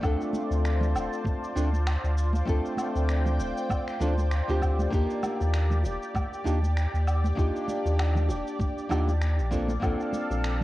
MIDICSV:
0, 0, Header, 1, 5, 480
1, 0, Start_track
1, 0, Tempo, 612245
1, 23, Time_signature, 4, 2, 24, 8
1, 8339, End_track
2, 0, Start_track
2, 0, Title_t, "Analog synth pad"
2, 0, Program_c, 0, 89
2, 0, Note_on_c, 0, 65, 76
2, 0, Note_on_c, 0, 74, 68
2, 23, Note_on_c, 0, 72, 67
2, 25, Note_on_c, 0, 81, 83
2, 1924, Note_off_c, 0, 81, 0
2, 1940, Note_on_c, 0, 79, 86
2, 3832, Note_off_c, 0, 72, 0
2, 3833, Note_off_c, 0, 65, 0
2, 3842, Note_off_c, 0, 79, 0
2, 3863, Note_on_c, 0, 67, 79
2, 7431, Note_off_c, 0, 67, 0
2, 7462, Note_on_c, 0, 69, 79
2, 7464, Note_on_c, 0, 77, 71
2, 8339, Note_off_c, 0, 69, 0
2, 8339, Note_off_c, 0, 74, 0
2, 8339, Note_off_c, 0, 77, 0
2, 8339, End_track
3, 0, Start_track
3, 0, Title_t, "Nylon-string guitar"
3, 0, Program_c, 1, 24
3, 7, Note_on_c, 1, 57, 78
3, 14, Note_on_c, 1, 60, 73
3, 22, Note_on_c, 1, 62, 69
3, 29, Note_on_c, 1, 65, 74
3, 36, Note_on_c, 1, 69, 96
3, 1190, Note_off_c, 1, 57, 0
3, 1193, Note_off_c, 1, 60, 0
3, 1197, Note_off_c, 1, 62, 0
3, 1201, Note_off_c, 1, 65, 0
3, 1204, Note_off_c, 1, 69, 0
3, 1216, Note_on_c, 1, 57, 68
3, 1220, Note_on_c, 1, 60, 63
3, 1223, Note_on_c, 1, 62, 64
3, 1227, Note_on_c, 1, 65, 61
3, 1232, Note_on_c, 1, 69, 67
3, 1317, Note_off_c, 1, 57, 0
3, 1318, Note_off_c, 1, 60, 0
3, 1319, Note_off_c, 1, 62, 0
3, 1322, Note_off_c, 1, 65, 0
3, 1323, Note_off_c, 1, 69, 0
3, 1925, Note_on_c, 1, 57, 82
3, 1934, Note_on_c, 1, 60, 75
3, 1942, Note_on_c, 1, 62, 74
3, 1950, Note_on_c, 1, 65, 71
3, 1957, Note_on_c, 1, 69, 86
3, 3109, Note_off_c, 1, 57, 0
3, 3113, Note_off_c, 1, 60, 0
3, 3117, Note_off_c, 1, 62, 0
3, 3122, Note_off_c, 1, 65, 0
3, 3125, Note_off_c, 1, 69, 0
3, 3134, Note_on_c, 1, 57, 78
3, 3139, Note_on_c, 1, 60, 77
3, 3145, Note_on_c, 1, 62, 73
3, 3145, Note_on_c, 1, 65, 76
3, 3149, Note_on_c, 1, 69, 92
3, 3235, Note_off_c, 1, 57, 0
3, 3238, Note_off_c, 1, 60, 0
3, 3239, Note_off_c, 1, 62, 0
3, 3240, Note_off_c, 1, 65, 0
3, 3242, Note_off_c, 1, 69, 0
3, 3511, Note_on_c, 1, 57, 78
3, 3517, Note_on_c, 1, 60, 69
3, 3519, Note_on_c, 1, 62, 67
3, 3523, Note_on_c, 1, 65, 74
3, 3529, Note_on_c, 1, 67, 85
3, 3834, Note_off_c, 1, 57, 0
3, 3836, Note_off_c, 1, 60, 0
3, 3838, Note_off_c, 1, 62, 0
3, 3841, Note_off_c, 1, 65, 0
3, 3841, Note_off_c, 1, 67, 0
3, 3845, Note_on_c, 1, 58, 83
3, 3851, Note_on_c, 1, 62, 72
3, 3859, Note_on_c, 1, 63, 77
3, 3867, Note_on_c, 1, 65, 71
3, 3875, Note_on_c, 1, 67, 86
3, 5029, Note_off_c, 1, 58, 0
3, 5032, Note_off_c, 1, 62, 0
3, 5036, Note_off_c, 1, 63, 0
3, 5040, Note_off_c, 1, 65, 0
3, 5044, Note_off_c, 1, 67, 0
3, 5050, Note_on_c, 1, 58, 66
3, 5055, Note_on_c, 1, 62, 61
3, 5058, Note_on_c, 1, 63, 58
3, 5061, Note_on_c, 1, 65, 59
3, 5066, Note_on_c, 1, 67, 68
3, 5153, Note_off_c, 1, 58, 0
3, 5155, Note_off_c, 1, 62, 0
3, 5157, Note_off_c, 1, 63, 0
3, 5159, Note_off_c, 1, 65, 0
3, 5161, Note_off_c, 1, 67, 0
3, 5764, Note_on_c, 1, 58, 78
3, 5770, Note_on_c, 1, 62, 72
3, 5779, Note_on_c, 1, 63, 78
3, 5786, Note_on_c, 1, 65, 72
3, 5793, Note_on_c, 1, 67, 91
3, 6948, Note_off_c, 1, 58, 0
3, 6952, Note_off_c, 1, 62, 0
3, 6956, Note_off_c, 1, 63, 0
3, 6960, Note_off_c, 1, 65, 0
3, 6963, Note_off_c, 1, 67, 0
3, 6971, Note_on_c, 1, 58, 82
3, 6977, Note_on_c, 1, 62, 78
3, 6980, Note_on_c, 1, 63, 76
3, 6983, Note_on_c, 1, 65, 73
3, 6989, Note_on_c, 1, 67, 97
3, 7127, Note_off_c, 1, 58, 0
3, 7130, Note_off_c, 1, 62, 0
3, 7132, Note_off_c, 1, 63, 0
3, 7134, Note_off_c, 1, 65, 0
3, 7135, Note_off_c, 1, 67, 0
3, 7454, Note_on_c, 1, 58, 78
3, 7459, Note_on_c, 1, 60, 71
3, 7462, Note_on_c, 1, 62, 69
3, 7468, Note_on_c, 1, 65, 70
3, 7471, Note_on_c, 1, 69, 80
3, 7609, Note_off_c, 1, 58, 0
3, 7610, Note_off_c, 1, 60, 0
3, 7613, Note_off_c, 1, 62, 0
3, 7616, Note_off_c, 1, 65, 0
3, 7617, Note_off_c, 1, 69, 0
3, 7682, Note_on_c, 1, 58, 81
3, 7690, Note_on_c, 1, 60, 73
3, 7698, Note_on_c, 1, 62, 75
3, 7705, Note_on_c, 1, 65, 74
3, 7713, Note_on_c, 1, 69, 96
3, 8339, Note_off_c, 1, 58, 0
3, 8339, Note_off_c, 1, 60, 0
3, 8339, Note_off_c, 1, 62, 0
3, 8339, Note_off_c, 1, 65, 0
3, 8339, Note_off_c, 1, 69, 0
3, 8339, End_track
4, 0, Start_track
4, 0, Title_t, "Sub bass"
4, 0, Program_c, 2, 38
4, 22, Note_on_c, 2, 38, 96
4, 124, Note_off_c, 2, 38, 0
4, 394, Note_on_c, 2, 38, 103
4, 740, Note_on_c, 2, 26, 89
4, 752, Note_off_c, 2, 38, 0
4, 843, Note_off_c, 2, 26, 0
4, 1221, Note_on_c, 2, 38, 92
4, 1543, Note_off_c, 2, 38, 0
4, 1597, Note_on_c, 2, 38, 91
4, 1900, Note_off_c, 2, 38, 0
4, 1941, Note_on_c, 2, 38, 94
4, 2044, Note_off_c, 2, 38, 0
4, 2314, Note_on_c, 2, 38, 99
4, 2657, Note_on_c, 2, 26, 96
4, 2669, Note_off_c, 2, 38, 0
4, 2762, Note_off_c, 2, 26, 0
4, 3137, Note_on_c, 2, 38, 89
4, 3461, Note_off_c, 2, 38, 0
4, 3517, Note_on_c, 2, 38, 89
4, 3820, Note_off_c, 2, 38, 0
4, 3862, Note_on_c, 2, 39, 89
4, 3964, Note_off_c, 2, 39, 0
4, 4238, Note_on_c, 2, 39, 98
4, 4579, Note_on_c, 2, 27, 94
4, 4591, Note_off_c, 2, 39, 0
4, 4683, Note_off_c, 2, 27, 0
4, 5060, Note_on_c, 2, 39, 93
4, 5383, Note_off_c, 2, 39, 0
4, 5437, Note_on_c, 2, 39, 90
4, 5740, Note_off_c, 2, 39, 0
4, 5781, Note_on_c, 2, 39, 91
4, 5884, Note_off_c, 2, 39, 0
4, 6157, Note_on_c, 2, 39, 100
4, 6501, Note_on_c, 2, 27, 95
4, 6513, Note_off_c, 2, 39, 0
4, 6604, Note_off_c, 2, 27, 0
4, 6983, Note_on_c, 2, 39, 91
4, 7361, Note_on_c, 2, 34, 91
4, 7372, Note_off_c, 2, 39, 0
4, 7662, Note_off_c, 2, 34, 0
4, 7701, Note_on_c, 2, 34, 93
4, 7804, Note_off_c, 2, 34, 0
4, 8075, Note_on_c, 2, 34, 94
4, 8339, Note_off_c, 2, 34, 0
4, 8339, End_track
5, 0, Start_track
5, 0, Title_t, "Drums"
5, 21, Note_on_c, 9, 36, 112
5, 25, Note_on_c, 9, 77, 68
5, 28, Note_on_c, 9, 82, 40
5, 99, Note_off_c, 9, 36, 0
5, 103, Note_off_c, 9, 77, 0
5, 106, Note_off_c, 9, 82, 0
5, 164, Note_on_c, 9, 82, 21
5, 242, Note_off_c, 9, 82, 0
5, 258, Note_on_c, 9, 63, 85
5, 268, Note_on_c, 9, 82, 72
5, 336, Note_off_c, 9, 63, 0
5, 347, Note_off_c, 9, 82, 0
5, 404, Note_on_c, 9, 82, 30
5, 483, Note_off_c, 9, 82, 0
5, 509, Note_on_c, 9, 26, 92
5, 512, Note_on_c, 9, 82, 44
5, 587, Note_off_c, 9, 26, 0
5, 590, Note_off_c, 9, 82, 0
5, 632, Note_on_c, 9, 64, 76
5, 634, Note_on_c, 9, 63, 68
5, 649, Note_on_c, 9, 82, 22
5, 711, Note_off_c, 9, 64, 0
5, 712, Note_off_c, 9, 63, 0
5, 727, Note_off_c, 9, 82, 0
5, 749, Note_on_c, 9, 77, 73
5, 752, Note_on_c, 9, 82, 78
5, 827, Note_off_c, 9, 77, 0
5, 830, Note_off_c, 9, 82, 0
5, 886, Note_on_c, 9, 82, 32
5, 964, Note_off_c, 9, 82, 0
5, 976, Note_on_c, 9, 63, 86
5, 981, Note_on_c, 9, 36, 112
5, 992, Note_on_c, 9, 82, 43
5, 1054, Note_off_c, 9, 63, 0
5, 1060, Note_off_c, 9, 36, 0
5, 1070, Note_off_c, 9, 82, 0
5, 1128, Note_on_c, 9, 82, 20
5, 1206, Note_off_c, 9, 82, 0
5, 1232, Note_on_c, 9, 82, 69
5, 1310, Note_off_c, 9, 82, 0
5, 1356, Note_on_c, 9, 63, 67
5, 1367, Note_on_c, 9, 82, 31
5, 1434, Note_off_c, 9, 63, 0
5, 1446, Note_off_c, 9, 82, 0
5, 1466, Note_on_c, 9, 26, 99
5, 1466, Note_on_c, 9, 77, 71
5, 1469, Note_on_c, 9, 82, 44
5, 1544, Note_off_c, 9, 26, 0
5, 1544, Note_off_c, 9, 77, 0
5, 1547, Note_off_c, 9, 82, 0
5, 1605, Note_on_c, 9, 82, 22
5, 1683, Note_off_c, 9, 82, 0
5, 1709, Note_on_c, 9, 82, 76
5, 1787, Note_off_c, 9, 82, 0
5, 1828, Note_on_c, 9, 63, 98
5, 1846, Note_on_c, 9, 82, 34
5, 1906, Note_off_c, 9, 63, 0
5, 1924, Note_off_c, 9, 82, 0
5, 1941, Note_on_c, 9, 36, 110
5, 1946, Note_on_c, 9, 82, 43
5, 2020, Note_off_c, 9, 36, 0
5, 2025, Note_off_c, 9, 82, 0
5, 2083, Note_on_c, 9, 82, 20
5, 2162, Note_off_c, 9, 82, 0
5, 2173, Note_on_c, 9, 63, 73
5, 2182, Note_on_c, 9, 77, 64
5, 2185, Note_on_c, 9, 82, 70
5, 2251, Note_off_c, 9, 63, 0
5, 2261, Note_off_c, 9, 77, 0
5, 2264, Note_off_c, 9, 82, 0
5, 2321, Note_on_c, 9, 82, 29
5, 2399, Note_off_c, 9, 82, 0
5, 2423, Note_on_c, 9, 26, 88
5, 2426, Note_on_c, 9, 82, 43
5, 2501, Note_off_c, 9, 26, 0
5, 2504, Note_off_c, 9, 82, 0
5, 2553, Note_on_c, 9, 63, 61
5, 2557, Note_on_c, 9, 64, 73
5, 2561, Note_on_c, 9, 82, 21
5, 2632, Note_off_c, 9, 63, 0
5, 2635, Note_off_c, 9, 64, 0
5, 2639, Note_off_c, 9, 82, 0
5, 2666, Note_on_c, 9, 82, 72
5, 2744, Note_off_c, 9, 82, 0
5, 2802, Note_on_c, 9, 82, 31
5, 2881, Note_off_c, 9, 82, 0
5, 2897, Note_on_c, 9, 63, 89
5, 2901, Note_on_c, 9, 36, 110
5, 2904, Note_on_c, 9, 77, 68
5, 2907, Note_on_c, 9, 82, 42
5, 2975, Note_off_c, 9, 63, 0
5, 2979, Note_off_c, 9, 36, 0
5, 2982, Note_off_c, 9, 77, 0
5, 2985, Note_off_c, 9, 82, 0
5, 3039, Note_on_c, 9, 26, 27
5, 3042, Note_on_c, 9, 82, 21
5, 3118, Note_off_c, 9, 26, 0
5, 3121, Note_off_c, 9, 82, 0
5, 3140, Note_on_c, 9, 64, 76
5, 3145, Note_on_c, 9, 82, 69
5, 3218, Note_off_c, 9, 64, 0
5, 3224, Note_off_c, 9, 82, 0
5, 3274, Note_on_c, 9, 63, 68
5, 3282, Note_on_c, 9, 82, 34
5, 3352, Note_off_c, 9, 63, 0
5, 3361, Note_off_c, 9, 82, 0
5, 3382, Note_on_c, 9, 26, 90
5, 3385, Note_on_c, 9, 82, 40
5, 3460, Note_off_c, 9, 26, 0
5, 3463, Note_off_c, 9, 82, 0
5, 3520, Note_on_c, 9, 82, 20
5, 3599, Note_off_c, 9, 82, 0
5, 3621, Note_on_c, 9, 36, 54
5, 3623, Note_on_c, 9, 77, 66
5, 3626, Note_on_c, 9, 82, 73
5, 3699, Note_off_c, 9, 36, 0
5, 3701, Note_off_c, 9, 77, 0
5, 3704, Note_off_c, 9, 82, 0
5, 3756, Note_on_c, 9, 63, 80
5, 3760, Note_on_c, 9, 82, 35
5, 3834, Note_off_c, 9, 63, 0
5, 3839, Note_off_c, 9, 82, 0
5, 3861, Note_on_c, 9, 36, 114
5, 3864, Note_on_c, 9, 82, 41
5, 3939, Note_off_c, 9, 36, 0
5, 3943, Note_off_c, 9, 82, 0
5, 4000, Note_on_c, 9, 82, 19
5, 4078, Note_off_c, 9, 82, 0
5, 4100, Note_on_c, 9, 77, 62
5, 4101, Note_on_c, 9, 63, 83
5, 4103, Note_on_c, 9, 82, 68
5, 4179, Note_off_c, 9, 63, 0
5, 4179, Note_off_c, 9, 77, 0
5, 4182, Note_off_c, 9, 82, 0
5, 4234, Note_on_c, 9, 60, 45
5, 4243, Note_on_c, 9, 82, 28
5, 4313, Note_off_c, 9, 60, 0
5, 4321, Note_off_c, 9, 82, 0
5, 4341, Note_on_c, 9, 26, 89
5, 4344, Note_on_c, 9, 82, 40
5, 4419, Note_off_c, 9, 26, 0
5, 4422, Note_off_c, 9, 82, 0
5, 4469, Note_on_c, 9, 63, 61
5, 4475, Note_on_c, 9, 64, 61
5, 4481, Note_on_c, 9, 82, 20
5, 4548, Note_off_c, 9, 63, 0
5, 4553, Note_off_c, 9, 64, 0
5, 4559, Note_off_c, 9, 82, 0
5, 4577, Note_on_c, 9, 60, 55
5, 4589, Note_on_c, 9, 82, 72
5, 4655, Note_off_c, 9, 60, 0
5, 4667, Note_off_c, 9, 82, 0
5, 4725, Note_on_c, 9, 82, 30
5, 4803, Note_off_c, 9, 82, 0
5, 4817, Note_on_c, 9, 63, 78
5, 4820, Note_on_c, 9, 36, 102
5, 4824, Note_on_c, 9, 77, 67
5, 4827, Note_on_c, 9, 82, 40
5, 4895, Note_off_c, 9, 63, 0
5, 4898, Note_off_c, 9, 36, 0
5, 4903, Note_off_c, 9, 77, 0
5, 4906, Note_off_c, 9, 82, 0
5, 4965, Note_on_c, 9, 82, 20
5, 5044, Note_off_c, 9, 82, 0
5, 5070, Note_on_c, 9, 82, 66
5, 5148, Note_off_c, 9, 82, 0
5, 5195, Note_on_c, 9, 63, 61
5, 5207, Note_on_c, 9, 82, 33
5, 5274, Note_off_c, 9, 63, 0
5, 5286, Note_off_c, 9, 82, 0
5, 5307, Note_on_c, 9, 26, 90
5, 5310, Note_on_c, 9, 82, 42
5, 5386, Note_off_c, 9, 26, 0
5, 5389, Note_off_c, 9, 82, 0
5, 5448, Note_on_c, 9, 82, 19
5, 5526, Note_off_c, 9, 82, 0
5, 5546, Note_on_c, 9, 77, 65
5, 5549, Note_on_c, 9, 82, 73
5, 5625, Note_off_c, 9, 77, 0
5, 5628, Note_off_c, 9, 82, 0
5, 5676, Note_on_c, 9, 63, 88
5, 5688, Note_on_c, 9, 82, 31
5, 5755, Note_off_c, 9, 63, 0
5, 5766, Note_off_c, 9, 82, 0
5, 5780, Note_on_c, 9, 36, 112
5, 5793, Note_on_c, 9, 82, 39
5, 5859, Note_off_c, 9, 36, 0
5, 5871, Note_off_c, 9, 82, 0
5, 5928, Note_on_c, 9, 82, 19
5, 6006, Note_off_c, 9, 82, 0
5, 6020, Note_on_c, 9, 63, 83
5, 6029, Note_on_c, 9, 82, 64
5, 6098, Note_off_c, 9, 63, 0
5, 6107, Note_off_c, 9, 82, 0
5, 6161, Note_on_c, 9, 60, 50
5, 6166, Note_on_c, 9, 82, 28
5, 6239, Note_off_c, 9, 60, 0
5, 6244, Note_off_c, 9, 82, 0
5, 6267, Note_on_c, 9, 26, 91
5, 6267, Note_on_c, 9, 77, 74
5, 6270, Note_on_c, 9, 82, 40
5, 6346, Note_off_c, 9, 26, 0
5, 6346, Note_off_c, 9, 77, 0
5, 6349, Note_off_c, 9, 82, 0
5, 6391, Note_on_c, 9, 64, 67
5, 6402, Note_on_c, 9, 63, 64
5, 6405, Note_on_c, 9, 82, 19
5, 6470, Note_off_c, 9, 64, 0
5, 6480, Note_off_c, 9, 63, 0
5, 6483, Note_off_c, 9, 82, 0
5, 6498, Note_on_c, 9, 60, 65
5, 6509, Note_on_c, 9, 82, 71
5, 6576, Note_off_c, 9, 60, 0
5, 6587, Note_off_c, 9, 82, 0
5, 6645, Note_on_c, 9, 82, 29
5, 6724, Note_off_c, 9, 82, 0
5, 6737, Note_on_c, 9, 63, 84
5, 6740, Note_on_c, 9, 36, 107
5, 6748, Note_on_c, 9, 82, 41
5, 6815, Note_off_c, 9, 63, 0
5, 6819, Note_off_c, 9, 36, 0
5, 6827, Note_off_c, 9, 82, 0
5, 6884, Note_on_c, 9, 82, 19
5, 6963, Note_off_c, 9, 82, 0
5, 6977, Note_on_c, 9, 64, 71
5, 6986, Note_on_c, 9, 77, 70
5, 6989, Note_on_c, 9, 82, 64
5, 7056, Note_off_c, 9, 64, 0
5, 7065, Note_off_c, 9, 77, 0
5, 7068, Note_off_c, 9, 82, 0
5, 7117, Note_on_c, 9, 60, 30
5, 7119, Note_on_c, 9, 63, 59
5, 7125, Note_on_c, 9, 82, 29
5, 7196, Note_off_c, 9, 60, 0
5, 7197, Note_off_c, 9, 63, 0
5, 7203, Note_off_c, 9, 82, 0
5, 7225, Note_on_c, 9, 26, 95
5, 7228, Note_on_c, 9, 82, 41
5, 7303, Note_off_c, 9, 26, 0
5, 7306, Note_off_c, 9, 82, 0
5, 7363, Note_on_c, 9, 82, 19
5, 7441, Note_off_c, 9, 82, 0
5, 7461, Note_on_c, 9, 36, 55
5, 7463, Note_on_c, 9, 82, 66
5, 7539, Note_off_c, 9, 36, 0
5, 7542, Note_off_c, 9, 82, 0
5, 7591, Note_on_c, 9, 63, 81
5, 7600, Note_on_c, 9, 82, 30
5, 7670, Note_off_c, 9, 63, 0
5, 7679, Note_off_c, 9, 82, 0
5, 7701, Note_on_c, 9, 36, 110
5, 7704, Note_on_c, 9, 77, 73
5, 7707, Note_on_c, 9, 82, 38
5, 7779, Note_off_c, 9, 36, 0
5, 7783, Note_off_c, 9, 77, 0
5, 7786, Note_off_c, 9, 82, 0
5, 7843, Note_on_c, 9, 82, 19
5, 7921, Note_off_c, 9, 82, 0
5, 7939, Note_on_c, 9, 63, 86
5, 7947, Note_on_c, 9, 82, 64
5, 8017, Note_off_c, 9, 63, 0
5, 8026, Note_off_c, 9, 82, 0
5, 8080, Note_on_c, 9, 60, 50
5, 8085, Note_on_c, 9, 82, 26
5, 8159, Note_off_c, 9, 60, 0
5, 8163, Note_off_c, 9, 82, 0
5, 8186, Note_on_c, 9, 26, 88
5, 8189, Note_on_c, 9, 82, 39
5, 8264, Note_off_c, 9, 26, 0
5, 8267, Note_off_c, 9, 82, 0
5, 8339, End_track
0, 0, End_of_file